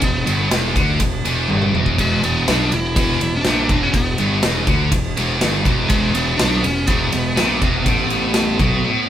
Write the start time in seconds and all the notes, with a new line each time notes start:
0.01 E1 E2 B3, kick, ride
0.26 G1 G2, ride
0.50 E1 E2, snare, ride
0.75 D2 D3, kick, ride
1.00 E1 E2, kick, ride
1.25 E1 E2, ride
1.49 G1 G2, high tom
1.62 mid tom
1.74 E1 E2, mid tom
1.86 kick
1.98 E1 E2 G#3, kick, ride
2.24 B3, ride
2.46 B1 B2 D4, snare, ride
2.72 E1 E2 E4, ride
2.96 E1 E2, kick, ride
3.21 E1 E2, ride
3.36 D4
3.44 A#1 A#2, snare, ride
3.69 E1 E2, kick, ride
3.83 C#4
3.94 E1 E2 B3, kick, ride
4.18 G1 G2, ride
4.43 E1 E2, snare, ride
4.67 D2 D3, kick, ride
4.92 E1 E2, kick, ride
5.17 E1 E2, ride
5.41 G1 G2, snare, ride
5.65 E1 E2, kick, ride
5.88 E1 E2 G#3, kick, ride
6.14 B3, ride
6.37 B1 B2 D4, snare, ride
6.63 E1 E2 C#4, ride
6.87 E1 E2 B3, kick, ride
7.12 E1 E2, ride
7.36 A#1 A#2, snare, ride
7.60 E1 E2, kick, ride
7.86 A1 A2, kick, ride
8.10 ride
8.34 snare, ride
8.59 B1 B2, kick, ride
8.85 A2